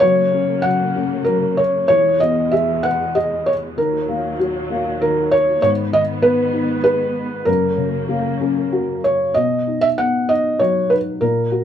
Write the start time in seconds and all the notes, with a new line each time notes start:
0.00 F#2 C#3 F#3 A#3 C#5
0.33 C#4
0.62 F#3 F#5
0.96 C#4
1.25 F#3 A#4
1.57 C#5
1.88 E2 B2 E3 G#3 C#5
2.20 B3 D#5
2.52 G#4 E5
2.83 B4 F#5
3.15 G#4 D#5
3.46 C#5
3.77 D#2 A#2 D#3 F#3 A#4
4.09 A#3
4.39 F#4
4.70 A#3
5.02 D#3 A#4
5.31 C#5
5.62 G#2 D#3 B3 C#5
5.92 D#3 D#5
6.22 B3 B4
6.53 D#4
6.84 G#4 B4
7.45 F#2 C#3 A#3 A#4
7.78 C#3
8.09 A#3
8.41 C#4
8.72 F#4
9.04 C#5
9.34 B2 D#5
9.67 D#4
9.81 E5
9.98 B3 F#5
10.29 D#4 D#5
10.59 F#3 C#5
10.90 D#4 B4
11.21 A#2 A#4
11.52 F#4